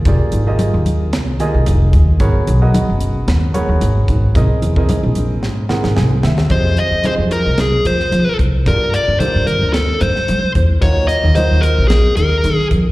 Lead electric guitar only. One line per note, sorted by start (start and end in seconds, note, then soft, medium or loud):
6.51 6.79 C5 medium
6.78 7.06 D#5 medium
7.05 7.13 C5 medium
7.32 7.60 A#4 medium
7.60 7.84 G#4 medium
7.87 8.36 C5 medium
8.68 8.95 A#4 medium
8.94 9.19 D5 medium
9.20 9.45 C5 medium
9.47 9.73 A#4 medium
9.73 10.01 A4 medium
10.01 10.51 C5 medium
10.82 11.07 C#5 medium
11.08 11.35 D#5 loud
11.36 11.63 C5 medium
11.62 11.88 A#4 medium
11.88 12.14 G#4 medium
12.17 12.67 A#4 medium